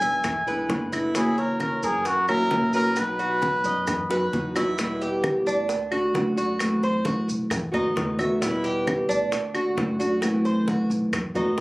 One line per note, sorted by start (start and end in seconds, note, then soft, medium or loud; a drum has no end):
0.00 0.65 B1 loud
0.00 0.23 B2 medium
0.00 0.23 D3 medium
0.00 0.23 G#3 medium
0.00 0.23 B3 medium
0.00 0.25 E4 medium
0.00 0.46 E5 medium
0.00 0.89 G#5 loud
0.00 high bongo soft
0.00 maracas medium
0.24 muted nylon-string guitar stroke medium
0.24 high bongo medium
0.24 high conga soft
0.24 low conga medium
0.24 claves medium
0.24 maracas medium
0.47 0.69 D3 medium
0.47 0.69 G#3 medium
0.47 0.69 B3 medium
0.47 0.69 E4 medium
0.47 0.91 B4 medium
0.47 high conga soft
0.47 maracas soft
0.69 1.77 F#1 medium
0.69 0.92 D3 medium
0.69 0.92 G#3 medium
0.69 0.93 B3 medium
0.69 0.92 E4 medium
0.69 high bongo medium
0.69 low bongo medium
0.69 high conga medium
0.69 maracas soft
0.92 1.14 D3 medium
0.92 1.15 G#3 medium
0.92 1.15 B3 medium
0.92 1.14 E4 medium
0.92 1.15 E4 medium
0.92 high bongo soft
0.92 claves medium
0.92 maracas medium
1.14 2.05 C#3 medium
1.14 2.05 E3 medium
1.14 2.05 A#3 medium
1.14 2.05 C#4 medium
1.14 1.38 E4 medium
1.14 2.06 F#4 medium
1.14 1.41 G#4 medium
1.14 high bongo medium
1.14 high conga soft
1.14 maracas medium
1.37 1.60 A#4 medium
1.37 1.82 C#5 medium
1.37 high conga soft
1.37 maracas soft
1.60 1.86 A#4 medium
1.60 high bongo medium
1.60 high conga medium
1.60 claves medium
1.60 maracas soft
1.83 2.47 F#2 loud
1.83 2.08 G#4 medium
1.83 2.27 A#4 medium
1.83 maracas medium
2.05 2.29 F#4 medium
2.05 muted nylon-string guitar stroke medium
2.05 high bongo medium
2.05 high conga soft
2.05 maracas medium
2.28 2.50 E3 medium
2.28 2.51 A#3 medium
2.28 2.51 C#4 medium
2.28 2.50 F#4 medium
2.28 2.71 A#4 loud
2.28 2.73 E5 medium
2.28 high conga soft
2.28 claves medium
2.28 maracas soft
2.51 3.59 B1 medium
2.51 2.73 E3 soft
2.51 2.74 A#3 medium
2.51 2.73 C#4 medium
2.51 2.73 F#4 medium
2.51 high bongo medium
2.51 low bongo medium
2.51 high conga medium
2.51 maracas soft
2.73 2.97 E3 medium
2.73 2.96 A#3 medium
2.73 2.96 C#4 medium
2.73 2.96 F#4 medium
2.73 3.00 A#4 loud
2.73 3.18 B4 medium
2.73 maracas medium
2.96 3.86 B2 medium
2.96 3.87 F#3 medium
2.96 3.87 B3 medium
2.96 3.87 D#4 medium
2.96 3.87 F#4 medium
2.96 4.34 B4 loud
2.96 high bongo medium
2.96 high conga soft
2.96 claves medium
2.96 maracas loud
3.19 3.63 F#4 medium
3.19 high bongo soft
3.19 high conga soft
3.19 maracas soft
3.42 high bongo medium
3.42 high conga loud
3.42 maracas soft
3.64 4.29 F#2 loud
3.64 4.09 D#5 medium
3.64 high bongo soft
3.64 maracas medium
3.87 muted nylon-string guitar stroke medium
3.87 high bongo loud
3.87 high conga soft
3.87 low conga medium
3.87 claves medium
3.87 maracas medium
4.09 4.31 F#3 medium
4.09 4.32 B3 medium
4.09 4.32 D#4 medium
4.09 4.32 F#4 medium
4.09 4.55 B4 medium
4.09 high bongo medium
4.09 high conga soft
4.09 maracas soft
4.32 5.40 E2 medium
4.32 4.54 F#3 medium
4.32 4.55 B3 medium
4.32 4.55 D#4 medium
4.32 4.54 F#4 medium
4.32 low bongo medium
4.32 high conga medium
4.32 maracas soft
4.55 4.78 F#3 medium
4.55 4.78 B3 medium
4.55 4.78 D#4 medium
4.55 4.78 E4 medium
4.55 4.77 F#4 medium
4.55 low bongo medium
4.55 claves medium
4.55 maracas medium
4.78 5.68 B2 medium
4.78 5.68 E3 medium
4.78 5.69 G3 medium
4.78 5.69 B3 medium
4.78 5.01 E4 medium
4.78 5.69 E4 medium
4.78 high bongo medium
4.78 high conga soft
4.78 maracas medium
5.01 5.45 G4 medium
5.01 high conga soft
5.01 maracas soft
5.24 high bongo medium
5.24 high conga loud
5.24 claves medium
5.24 maracas soft
5.46 6.10 D2 medium
5.46 5.91 D4 medium
5.46 maracas medium
5.69 muted nylon-string guitar stroke medium
5.69 high bongo medium
5.69 high conga soft
5.69 maracas medium
5.91 6.14 A3 medium
5.91 6.14 D4 medium
5.91 6.13 F#4 medium
5.91 6.36 F#4 medium
5.91 high conga soft
5.91 claves medium
5.91 maracas soft
6.14 7.22 F#2 medium
6.14 6.36 D3 medium
6.14 6.37 A3 medium
6.14 6.37 D4 medium
6.14 6.35 F#4 medium
6.14 high bongo medium
6.14 low bongo medium
6.14 high conga medium
6.14 maracas soft
6.36 6.58 A3 medium
6.36 6.59 D4 medium
6.36 6.59 F#4 medium
6.36 6.81 F#4 medium
6.36 maracas medium
6.59 7.49 E3 medium
6.59 7.50 A3 medium
6.59 7.50 C4 medium
6.59 7.50 E4 medium
6.59 high bongo medium
6.59 high conga soft
6.59 claves medium
6.59 maracas medium
6.83 7.05 C5 medium
6.83 high bongo soft
6.83 high conga soft
6.83 maracas soft
7.05 7.27 F#4 medium
7.05 high bongo medium
7.05 high conga loud
7.05 maracas soft
7.28 7.70 B1 medium
7.28 high bongo soft
7.28 maracas medium
7.50 muted nylon-string guitar stroke medium
7.50 high bongo medium
7.50 high conga soft
7.50 low conga medium
7.50 claves medium
7.50 maracas medium
7.72 7.94 D#2 medium
7.72 7.94 D#3 medium
7.72 7.95 A3 medium
7.72 7.94 B3 medium
7.72 8.18 D#4 medium
7.72 7.94 F#4 medium
7.72 high conga soft
7.72 low conga medium
7.72 maracas soft
7.96 9.03 E2 loud
7.96 8.18 D#3 medium
7.96 8.18 A3 medium
7.96 8.18 B3 medium
7.96 8.18 F#4 medium
7.96 high bongo medium
7.96 low bongo medium
7.96 high conga medium
7.96 maracas soft
8.19 8.42 D#3 medium
8.19 8.42 A3 medium
8.19 8.41 B3 medium
8.19 8.41 F#4 medium
8.19 8.41 E5 medium
8.19 high bongo soft
8.19 high conga medium
8.19 claves medium
8.19 maracas medium
8.41 9.31 B2 medium
8.41 9.31 E3 medium
8.41 9.31 G3 medium
8.41 9.32 B3 medium
8.41 8.64 E4 medium
8.41 9.32 E4 medium
8.41 high bongo medium
8.41 high conga soft
8.41 maracas medium
8.64 9.08 G4 medium
8.64 high conga soft
8.64 maracas soft
8.87 high bongo medium
8.87 high conga loud
8.87 claves medium
8.87 maracas soft
9.09 9.73 D2 loud
9.09 9.53 D4 medium
9.09 maracas medium
9.32 muted nylon-string guitar stroke medium
9.32 high bongo medium
9.32 high conga soft
9.32 maracas medium
9.54 9.76 A3 medium
9.54 9.76 D4 medium
9.54 9.76 F#4 medium
9.54 9.99 F#4 medium
9.54 high conga soft
9.54 claves medium
9.54 maracas soft
9.76 10.84 F#2 medium
9.76 9.99 D3 medium
9.76 9.99 A3 medium
9.76 9.99 D4 medium
9.76 9.98 F#4 medium
9.76 high bongo medium
9.76 low bongo medium
9.76 high conga medium
9.76 maracas soft
9.99 10.21 A3 medium
9.99 10.22 D4 medium
9.99 10.21 F#4 medium
9.99 10.44 F#4 medium
9.99 maracas medium
10.20 11.11 E3 medium
10.20 11.12 A3 medium
10.20 11.12 C4 medium
10.20 11.13 E4 medium
10.20 high bongo medium
10.20 high conga soft
10.20 claves medium
10.20 maracas medium
10.45 10.67 C5 medium
10.45 high bongo soft
10.45 high conga soft
10.45 maracas soft
10.68 10.90 F#4 medium
10.68 high bongo medium
10.68 high conga loud
10.68 maracas soft
10.90 11.32 B1 medium
10.90 high bongo soft
10.90 maracas medium
11.13 muted nylon-string guitar stroke medium
11.13 high bongo medium
11.13 high conga soft
11.13 low conga medium
11.13 claves medium
11.13 maracas medium
11.35 11.57 D#2 medium
11.35 11.57 D#3 medium
11.35 11.57 A3 medium
11.35 11.57 B3 medium
11.35 11.61 D#4 medium
11.35 11.57 F#4 medium
11.35 high conga soft
11.35 low conga medium
11.35 maracas soft